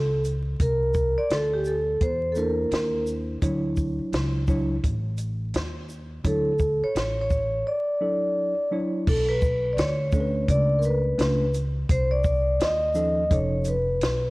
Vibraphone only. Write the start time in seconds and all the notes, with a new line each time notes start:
Already playing: A4
0.62 A#4
1.18 D5
1.32 A4
1.54 G4
1.67 A4
2.02 C5
2.32 A4
2.38 A#4
6.27 A4
6.84 C#5
7.21 C#5
7.67 D5
9.08 A4
9.29 B4
9.73 D5
9.79 C#5
10.50 D5
10.79 A#4
10.85 B4
11.91 C5
12.11 D5
12.62 D#5
13.32 C#5
13.68 B4